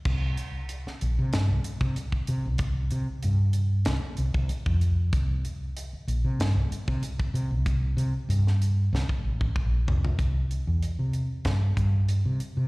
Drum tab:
CC |x---------------|----------------|----------------|----------------|
HH |--x-x-x-x-x-x-x-|x-x-x-x-x-x-x-x-|x-x-x-x-x-x-x-x-|x-x-x-x---------|
SD |-----o--o-------|--------o-------|--------o-------|-----o--o-------|
FT |----------------|----------------|----------------|--------------oo|
BD |o----------o-o--|o----------o-o--|o----------o-o--|o--------o-oo---|

CC |----------------|
HH |x-x-x-x-x-x-x-x-|
SD |--------o-------|
FT |----------------|
BD |o-------o-o-----|